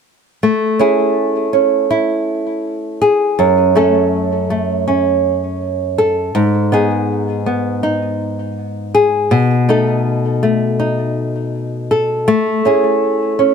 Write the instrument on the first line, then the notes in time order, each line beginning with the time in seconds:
nylon-string guitar
0.43 A3
0.79 C#4 E4 G#4
1.53 C#4
1.91 E4
3.02 G#4
3.39 F#2
3.75 A3 C#4 A4
4.50 A3
4.88 C#4
5.98 A4
6.35 G#2
6.72 B3 D#4 G#4
7.46 B3
7.83 D#4
8.94 G#4
9.31 B2
9.69 A3 D#4 A4
10.43 A3
10.80 D#4
11.91 A4
12.28 A3
12.65 C#4 E4 G#4
13.39 C#4